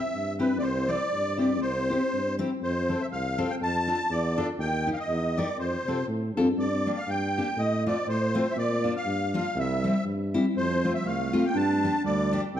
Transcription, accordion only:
0, 0, Header, 1, 2, 480
1, 0, Start_track
1, 0, Key_signature, -1, "major"
1, 0, Tempo, 496689
1, 612, Time_signature, 2, 2, 24, 8
1, 12175, End_track
2, 0, Start_track
2, 0, Title_t, "Accordion"
2, 0, Program_c, 0, 21
2, 0, Note_on_c, 0, 76, 86
2, 345, Note_off_c, 0, 76, 0
2, 385, Note_on_c, 0, 71, 72
2, 558, Note_off_c, 0, 71, 0
2, 566, Note_on_c, 0, 74, 62
2, 601, Note_on_c, 0, 72, 83
2, 616, Note_off_c, 0, 74, 0
2, 850, Note_on_c, 0, 74, 91
2, 874, Note_off_c, 0, 72, 0
2, 1329, Note_off_c, 0, 74, 0
2, 1343, Note_on_c, 0, 74, 68
2, 1550, Note_off_c, 0, 74, 0
2, 1562, Note_on_c, 0, 72, 85
2, 2272, Note_off_c, 0, 72, 0
2, 2544, Note_on_c, 0, 72, 78
2, 2912, Note_on_c, 0, 76, 77
2, 2922, Note_off_c, 0, 72, 0
2, 2960, Note_off_c, 0, 76, 0
2, 3017, Note_on_c, 0, 77, 87
2, 3383, Note_on_c, 0, 79, 84
2, 3396, Note_off_c, 0, 77, 0
2, 3432, Note_off_c, 0, 79, 0
2, 3509, Note_on_c, 0, 81, 115
2, 3981, Note_on_c, 0, 74, 87
2, 3992, Note_off_c, 0, 81, 0
2, 4317, Note_off_c, 0, 74, 0
2, 4447, Note_on_c, 0, 79, 95
2, 4733, Note_off_c, 0, 79, 0
2, 4764, Note_on_c, 0, 77, 58
2, 4820, Note_off_c, 0, 77, 0
2, 4825, Note_on_c, 0, 75, 77
2, 5188, Note_on_c, 0, 74, 80
2, 5201, Note_off_c, 0, 75, 0
2, 5391, Note_off_c, 0, 74, 0
2, 5407, Note_on_c, 0, 72, 73
2, 5854, Note_off_c, 0, 72, 0
2, 6371, Note_on_c, 0, 74, 81
2, 6743, Note_on_c, 0, 77, 77
2, 6755, Note_off_c, 0, 74, 0
2, 6857, Note_off_c, 0, 77, 0
2, 6859, Note_on_c, 0, 79, 85
2, 7336, Note_on_c, 0, 75, 82
2, 7351, Note_off_c, 0, 79, 0
2, 7576, Note_off_c, 0, 75, 0
2, 7606, Note_on_c, 0, 74, 81
2, 7802, Note_off_c, 0, 74, 0
2, 7817, Note_on_c, 0, 72, 88
2, 8225, Note_on_c, 0, 76, 75
2, 8240, Note_off_c, 0, 72, 0
2, 8285, Note_off_c, 0, 76, 0
2, 8296, Note_on_c, 0, 74, 84
2, 8633, Note_off_c, 0, 74, 0
2, 8665, Note_on_c, 0, 77, 84
2, 9040, Note_off_c, 0, 77, 0
2, 9054, Note_on_c, 0, 77, 91
2, 9264, Note_off_c, 0, 77, 0
2, 9267, Note_on_c, 0, 76, 86
2, 9706, Note_off_c, 0, 76, 0
2, 10216, Note_on_c, 0, 72, 97
2, 10562, Note_off_c, 0, 72, 0
2, 10578, Note_on_c, 0, 76, 81
2, 10695, Note_on_c, 0, 77, 83
2, 10696, Note_off_c, 0, 76, 0
2, 11071, Note_on_c, 0, 79, 79
2, 11078, Note_off_c, 0, 77, 0
2, 11179, Note_on_c, 0, 81, 100
2, 11182, Note_off_c, 0, 79, 0
2, 11623, Note_off_c, 0, 81, 0
2, 11651, Note_on_c, 0, 74, 89
2, 11996, Note_off_c, 0, 74, 0
2, 12144, Note_on_c, 0, 79, 99
2, 12175, Note_off_c, 0, 79, 0
2, 12175, End_track
0, 0, End_of_file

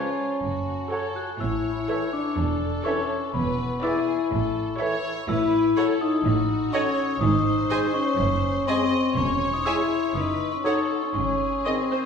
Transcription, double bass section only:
0, 0, Header, 1, 2, 480
1, 0, Start_track
1, 0, Tempo, 486224
1, 1384, Time_signature, 4, 2, 24, 8
1, 9537, Tempo, 500000
1, 11837, End_track
2, 0, Start_track
2, 0, Title_t, "Double bass section"
2, 0, Program_c, 0, 48
2, 423, Note_on_c, 0, 30, 58
2, 802, Note_off_c, 0, 30, 0
2, 1384, Note_on_c, 0, 33, 60
2, 1764, Note_off_c, 0, 33, 0
2, 2343, Note_on_c, 0, 28, 58
2, 2719, Note_off_c, 0, 28, 0
2, 3296, Note_on_c, 0, 28, 65
2, 3684, Note_off_c, 0, 28, 0
2, 4271, Note_on_c, 0, 33, 64
2, 4645, Note_off_c, 0, 33, 0
2, 5221, Note_on_c, 0, 33, 74
2, 5598, Note_off_c, 0, 33, 0
2, 6177, Note_on_c, 0, 33, 67
2, 6553, Note_off_c, 0, 33, 0
2, 7125, Note_on_c, 0, 32, 82
2, 7507, Note_off_c, 0, 32, 0
2, 8089, Note_on_c, 0, 30, 79
2, 8470, Note_off_c, 0, 30, 0
2, 9051, Note_on_c, 0, 28, 76
2, 9433, Note_off_c, 0, 28, 0
2, 10005, Note_on_c, 0, 30, 60
2, 10383, Note_off_c, 0, 30, 0
2, 10971, Note_on_c, 0, 32, 62
2, 11352, Note_off_c, 0, 32, 0
2, 11837, End_track
0, 0, End_of_file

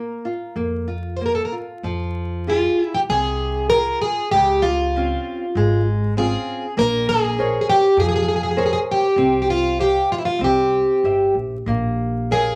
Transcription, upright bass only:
0, 0, Header, 1, 2, 480
1, 0, Start_track
1, 0, Key_signature, -4, "minor"
1, 0, Tempo, 628272
1, 1407, Time_signature, 4, 2, 24, 8
1, 2844, Tempo, 606061
1, 7644, Tempo, 631579
1, 9748, End_track
2, 0, Start_track
2, 0, Title_t, "Upright bass"
2, 0, Program_c, 0, 32
2, 425, Note_on_c, 0, 41, 82
2, 1060, Note_off_c, 0, 41, 0
2, 1401, Note_on_c, 0, 41, 83
2, 2028, Note_off_c, 0, 41, 0
2, 2362, Note_on_c, 0, 36, 83
2, 2985, Note_off_c, 0, 36, 0
2, 3326, Note_on_c, 0, 37, 94
2, 3957, Note_off_c, 0, 37, 0
2, 4294, Note_on_c, 0, 32, 92
2, 4916, Note_off_c, 0, 32, 0
2, 5257, Note_on_c, 0, 34, 98
2, 5876, Note_off_c, 0, 34, 0
2, 6205, Note_on_c, 0, 41, 98
2, 6826, Note_off_c, 0, 41, 0
2, 7151, Note_on_c, 0, 36, 91
2, 7781, Note_off_c, 0, 36, 0
2, 8105, Note_on_c, 0, 36, 81
2, 8422, Note_off_c, 0, 36, 0
2, 8593, Note_on_c, 0, 31, 66
2, 8814, Note_off_c, 0, 31, 0
2, 8832, Note_on_c, 0, 34, 64
2, 9054, Note_off_c, 0, 34, 0
2, 9072, Note_on_c, 0, 34, 88
2, 9698, Note_off_c, 0, 34, 0
2, 9748, End_track
0, 0, End_of_file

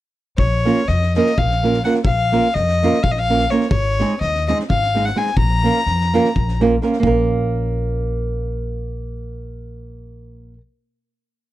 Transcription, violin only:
0, 0, Header, 1, 2, 480
1, 0, Start_track
1, 0, Key_signature, -5, "minor"
1, 0, Tempo, 476190
1, 394, Time_signature, 7, 3, 24, 8
1, 11621, End_track
2, 0, Start_track
2, 0, Title_t, "Violin"
2, 0, Program_c, 0, 40
2, 378, Note_on_c, 0, 73, 79
2, 885, Note_on_c, 0, 75, 77
2, 900, Note_off_c, 0, 73, 0
2, 1164, Note_off_c, 0, 75, 0
2, 1170, Note_on_c, 0, 75, 77
2, 1388, Note_on_c, 0, 77, 77
2, 1403, Note_off_c, 0, 75, 0
2, 1855, Note_off_c, 0, 77, 0
2, 1860, Note_on_c, 0, 78, 72
2, 1955, Note_off_c, 0, 78, 0
2, 2059, Note_on_c, 0, 77, 78
2, 2561, Note_on_c, 0, 75, 83
2, 2576, Note_off_c, 0, 77, 0
2, 3049, Note_on_c, 0, 77, 80
2, 3064, Note_off_c, 0, 75, 0
2, 3137, Note_on_c, 0, 75, 66
2, 3152, Note_off_c, 0, 77, 0
2, 3213, Note_on_c, 0, 77, 96
2, 3228, Note_off_c, 0, 75, 0
2, 3528, Note_on_c, 0, 73, 76
2, 3543, Note_off_c, 0, 77, 0
2, 3723, Note_off_c, 0, 73, 0
2, 3729, Note_on_c, 0, 73, 85
2, 4198, Note_off_c, 0, 73, 0
2, 4241, Note_on_c, 0, 75, 75
2, 4500, Note_off_c, 0, 75, 0
2, 4515, Note_on_c, 0, 75, 84
2, 4615, Note_off_c, 0, 75, 0
2, 4732, Note_on_c, 0, 77, 83
2, 5092, Note_on_c, 0, 78, 72
2, 5107, Note_off_c, 0, 77, 0
2, 5217, Note_on_c, 0, 80, 74
2, 5232, Note_off_c, 0, 78, 0
2, 5413, Note_off_c, 0, 80, 0
2, 5420, Note_on_c, 0, 82, 91
2, 6629, Note_off_c, 0, 82, 0
2, 11621, End_track
0, 0, End_of_file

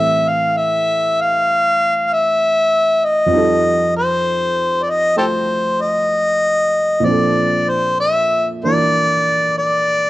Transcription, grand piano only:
0, 0, Header, 1, 2, 480
1, 0, Start_track
1, 0, Key_signature, -1, "major"
1, 0, Tempo, 924499
1, 1712, Time_signature, 4, 2, 24, 8
1, 2197, Tempo, 941915
1, 5187, End_track
2, 0, Start_track
2, 0, Title_t, "Grand piano"
2, 0, Program_c, 0, 0
2, 0, Control_c, 0, 64, 127
2, 0, Note_on_c, 0, 45, 44
2, 0, Note_on_c, 0, 52, 39
2, 0, Note_on_c, 0, 55, 37
2, 0, Note_on_c, 0, 60, 41
2, 0, Note_on_c, 0, 69, 49
2, 1694, Note_on_c, 0, 41, 42
2, 1706, Note_on_c, 0, 53, 34
2, 1708, Note_off_c, 0, 45, 0
2, 1710, Note_off_c, 0, 52, 0
2, 1714, Note_off_c, 0, 55, 0
2, 1717, Note_off_c, 0, 60, 0
2, 1718, Control_c, 0, 64, 0
2, 1720, Note_off_c, 0, 69, 0
2, 1722, Note_on_c, 0, 55, 38
2, 1734, Note_on_c, 0, 63, 39
2, 1750, Note_on_c, 0, 69, 49
2, 1824, Control_c, 0, 64, 127
2, 2671, Note_on_c, 0, 57, 33
2, 2678, Note_on_c, 0, 65, 26
2, 2679, Note_off_c, 0, 69, 0
2, 2686, Note_on_c, 0, 69, 33
2, 3607, Note_on_c, 0, 46, 39
2, 3615, Note_off_c, 0, 53, 0
2, 3623, Note_on_c, 0, 53, 33
2, 3625, Note_off_c, 0, 41, 0
2, 3632, Note_on_c, 0, 60, 34
2, 3633, Note_off_c, 0, 57, 0
2, 3637, Note_off_c, 0, 65, 0
2, 3639, Note_off_c, 0, 55, 0
2, 3641, Note_off_c, 0, 69, 0
2, 3641, Control_c, 0, 64, 0
2, 3645, Note_off_c, 0, 63, 0
2, 3648, Note_on_c, 0, 62, 33
2, 3663, Note_on_c, 0, 69, 40
2, 3717, Control_c, 0, 64, 127
2, 4439, Note_off_c, 0, 62, 0
2, 4440, Note_on_c, 0, 58, 33
2, 4446, Note_on_c, 0, 62, 31
2, 4451, Note_on_c, 0, 52, 30
2, 4457, Note_on_c, 0, 70, 37
2, 5187, Note_off_c, 0, 46, 0
2, 5187, Note_off_c, 0, 52, 0
2, 5187, Note_off_c, 0, 53, 0
2, 5187, Note_off_c, 0, 58, 0
2, 5187, Note_off_c, 0, 60, 0
2, 5187, Note_off_c, 0, 62, 0
2, 5187, Note_off_c, 0, 69, 0
2, 5187, Note_off_c, 0, 70, 0
2, 5187, End_track
0, 0, End_of_file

